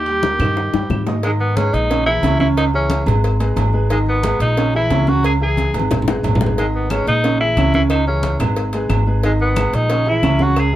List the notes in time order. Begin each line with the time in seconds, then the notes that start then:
Already playing: D#2 G4
0.06 G3 G4 G5, high conga, high timbale
0.23 A#3 A#4 A#5, high bongo, high conga, low timbale
0.39 G2 D#3 D#4 D#5, high bongo, high conga, low conga, high timbale, claves
0.56 high bongo, high conga
0.73 G2 G3 G4 G5, high bongo, high conga, high timbale
0.90 G#2, low bongo, high conga, claves
1.07 D#4 D#5 D#6, low bongo, high conga, low timbale
1.23 D#3 G#3 D#4 D#5, cowbell, high conga, low agogo
1.40 B3, high conga
1.57 G#3 C#4 G#4 B4, cowbell, high conga, low timbale, low agogo
1.73 A#1 D#4, cowbell, high conga
1.90 C#3 C#4 C#5, cowbell, high conga, low agogo
2.06 E3 E4 G#4, high conga
2.23 C#2 C#3 C#4 C#5, cowbell, high conga, low timbale, low agogo
2.40 C#3 C#4 E4 C#5, high conga, low agogo
2.57 D#4, cowbell, high conga, low agogo
2.74 E3 C#4 E4 G#4, high conga
2.90 cowbell, high conga, low timbale, low agogo
3.06 G#1 G#3 G#4 B4, cowbell, high conga, low conga, low agogo
3.24 cowbell, high conga
3.40 G#3 G#4 B4, cowbell, high conga
3.56 G#1, cowbell, high conga, low timbale, low agogo
3.73 G#3 G#4 B4, high conga
3.90 D#3 G#3 D#4 D#5, cowbell, high conga, low agogo
4.06 B3, high conga
4.23 G#3 G#4 B4, cowbell, high conga, low timbale, low agogo
4.40 A#1 D#4, cowbell, high conga
4.57 C#3 C#4 C#5, cowbell, high conga, low agogo
4.74 E3 E4 G#4, high conga
4.90 C#2 C#3 C#4 C#5, cowbell, high conga, low timbale, low agogo
5.07 C#3 C#4 F#4 C#5, high conga, low agogo
5.24 G#4, cowbell, high conga, low agogo
5.40 E3 E4 G#4, high conga
5.57 cowbell, high conga, low timbale, low agogo
5.74 G#1 G#3 G#4 B4, cowbell, low agogo
5.79 high conga
5.91 cowbell, high bongo, low conga
6.02 low conga
6.08 G#3 G#4 B4, cowbell, high bongo
6.23 G#1, cowbell, low conga, low timbale, low agogo
6.35 low conga
6.41 G#3 G#4 B4, low bongo
6.46 low conga
6.58 D#3 G#3 D#4 D#5, cowbell, low agogo
6.74 B3, high conga
6.90 G#3 C#4 G#4 B4, cowbell, high conga, low timbale, low agogo, claves
7.07 A#1 D#4, cowbell, high conga
7.24 C#3 C#4 C#5, cowbell, high conga, low agogo
7.40 E3 E4 G#4, high conga
7.57 C#2 C#3 C#4 C#5, cowbell, high conga, low timbale, low agogo, claves
7.74 C#3 C#4 E4 C#5, high conga, low agogo
7.90 D#4, cowbell, high conga, low agogo, claves
8.07 E3 C#4 E4 G#4, high conga
8.23 cowbell, high conga, low timbale, low agogo
8.39 G#1 G#3 G#4 B4, cowbell, high conga, low conga, low agogo, claves
8.56 cowbell, high conga
8.73 G#3 G#4 B4, cowbell, high conga
8.89 G#1, cowbell, high conga, low timbale, low agogo, claves
9.06 G#3 G#4 B4, high conga
9.23 D#3 G#3 D#4 D#5, cowbell, high conga, low agogo
9.39 B3, high conga
9.56 G#3 G#4 B4, cowbell, high conga, low timbale, low agogo, claves
9.73 A#1 D#4, cowbell, high conga
9.90 C#3 C#4 C#5, cowbell, high conga, low agogo
10.06 E3 E4 G#4, high conga
10.23 C#2 C#3 C#4 C#5, cowbell, high conga, low timbale, low agogo, claves
10.39 C#3 C#4 F#4 C#5, high conga, low agogo
10.56 G#4, cowbell, high conga, low agogo, claves
10.73 high conga